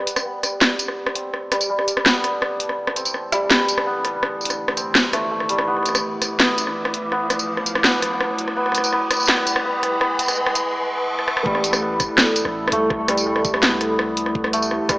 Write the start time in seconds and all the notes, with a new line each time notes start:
Already playing: G3 A3 B3 E4 B4 A5, riser
0.07 closed hi-hat, tambourine
0.16 cross-stick, closed hi-hat, tambourine
0.25 B3
0.43 cross-stick, closed hi-hat, tambourine
0.61 cross-stick, snare
0.79 closed hi-hat, tambourine
0.88 cross-stick
1.06 cross-stick
1.15 C4, closed hi-hat
1.34 cross-stick
1.52 G3, cross-stick, closed hi-hat, tambourine
1.61 closed hi-hat, tambourine
1.70 G3
1.79 cross-stick
1.88 closed hi-hat, tambourine
1.97 cross-stick
2.06 B3, snare
2.24 cross-stick, closed hi-hat
2.42 cross-stick
2.60 closed hi-hat
2.69 cross-stick
2.87 cross-stick
2.96 C4, closed hi-hat, tambourine
3.05 closed hi-hat, tambourine
3.14 cross-stick
3.32 G3, cross-stick, closed hi-hat, tambourine
3.50 G3, snare
3.60 cross-stick
3.68 closed hi-hat, tambourine
3.78 cross-stick
3.86 B3
4.05 cross-stick, closed hi-hat
4.23 cross-stick
4.41 tambourine
4.45 closed hi-hat
4.50 cross-stick, tambourine
4.68 cross-stick
4.77 C4, closed hi-hat, tambourine
4.95 cross-stick, snare
5.13 A3, cross-stick, closed hi-hat
5.31 A3
5.40 cross-stick
5.49 G3, closed hi-hat
5.58 cross-stick
5.67 B3 D6
5.77 cross-stick
5.83 cross-stick, closed hi-hat, tambourine
5.89 cross-stick
5.95 cross-stick, closed hi-hat, tambourine
6.22 cross-stick, closed hi-hat, tambourine
6.40 B3, cross-stick, snare
6.58 closed hi-hat, tambourine
6.67 cross-stick
6.85 cross-stick
6.94 closed hi-hat
7.12 B3, cross-stick
7.30 cross-stick, closed hi-hat, tambourine
7.39 closed hi-hat, tambourine
7.57 cross-stick
7.66 closed hi-hat, tambourine
7.75 cross-stick
7.84 B3, snare
8.02 cross-stick, closed hi-hat
8.20 cross-stick
8.38 closed hi-hat
8.48 cross-stick
8.57 B3
8.66 cross-stick
8.72 cross-stick, closed hi-hat, tambourine
8.78 cross-stick
8.84 closed hi-hat, tambourine
8.92 B3, cross-stick
9.11 cross-stick, closed hi-hat, tambourine
9.14 tambourine
9.17 tambourine
9.20 tambourine
9.23 tambourine
9.26 B3, snare, tambourine
9.38 cross-stick
9.47 closed hi-hat, tambourine
9.56 cross-stick
9.65 B3
9.83 cross-stick, closed hi-hat
10.01 B3, cross-stick
10.19 B3, closed hi-hat, tambourine
10.22 tambourine
10.24 tambourine
10.26 cross-stick, closed hi-hat, tambourine
10.28 tambourine
10.31 tambourine
10.33 tambourine
10.35 B3, tambourine
10.46 cross-stick
10.55 B3, closed hi-hat, tambourine
11.19 cross-stick
11.28 cross-stick
11.37 cross-stick
11.46 A1 G3 A3 E4 A4, kick
11.55 cross-stick
11.64 closed hi-hat, tambourine
11.73 cross-stick, tambourine
11.82 B3
12.00 kick, cross-stick, closed hi-hat, tambourine
12.18 cross-stick, snare
12.36 closed hi-hat, tambourine
12.45 A1, cross-stick
12.68 cross-stick
12.72 C2 A3, closed hi-hat
12.90 kick, cross-stick
13.08 G3, cross-stick, closed hi-hat
13.17 closed hi-hat, tambourine
13.26 G3
13.36 cross-stick
13.45 kick, closed hi-hat, tambourine
13.54 cross-stick
13.62 C2 B3, snare
13.81 cross-stick, closed hi-hat
13.99 cross-stick
14.17 closed hi-hat
14.26 cross-stick
14.35 G4, kick
14.44 cross-stick
14.53 A3, closed hi-hat, tambourine
14.62 tambourine
14.71 cross-stick
14.89 G3, kick, cross-stick, closed hi-hat, tambourine